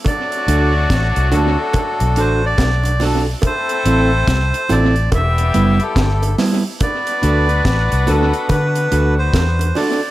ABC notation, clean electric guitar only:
X:1
M:4/4
L:1/16
Q:"Swing 16ths" 1/4=71
K:Dmix
V:1 name="Clean electric guitar"
z2 [DFA] z3 [DFA] z3 [DFA] z3 [DFA] z | z2 [CEA] z3 [CEA] z3 [G,B,E] z3 [G,B,E] z | z2 [DFA] z3 [DFA] z3 [DFA] z3 [DFA] z |]